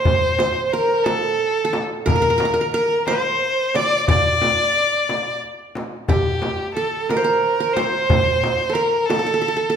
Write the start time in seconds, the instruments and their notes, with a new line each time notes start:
Already playing: qanun A#4 C5, violin C5
0.05 darbuka dum, frame drum
0.39 qanun C5, darbuka tek, frame drum
0.65 violin C5
0.73 violin A#4, qanun A#4
1.04 violin A4, qanun A4, darbuka tek, frame drum
1.65 qanun A4
1.73 darbuka tek, frame drum
2.06 qanun A#4, violin A#4, frame drum, darbuka dum
2.16 qanun A#4
2.22 qanun A#4
2.30 qanun A#4
2.38 qanun A#4, darbuka tek, frame drum
2.45 qanun A#4
2.54 qanun A#4
2.61 qanun A#4
2.74 violin A#4, qanun A#4
3.07 qanun C5, violin C5, darbuka tek, frame drum
3.75 qanun D5, violin D5, darbuka tek, frame drum
4.08 qanun D5, violin D5, darbuka dum, frame drum
4.42 darbuka tek, frame drum
5.09 darbuka tek, frame drum
5.44 darbuka ka
5.75 darbuka tek, frame drum
6.09 qanun G4, violin G4, darbuka dum, frame drum
6.42 darbuka tek, frame drum
6.74 violin A4, qanun A4
7.09 violin A#4, qanun A#4, darbuka tek, frame drum
7.17 qanun C5
7.24 qanun A#4
7.60 qanun A#4
7.73 violin C5, qanun C5, darbuka tek, frame drum
8.10 darbuka dum, frame drum
8.43 darbuka tek, frame drum
8.70 qanun A4, violin A#4
8.75 qanun A#4
9.06 violin A4
9.10 qanun A4, darbuka tek, frame drum
9.19 qanun A4
9.27 qanun A4
9.34 qanun A4
9.42 qanun A4
9.48 qanun A4
9.57 qanun A4
9.70 qanun A4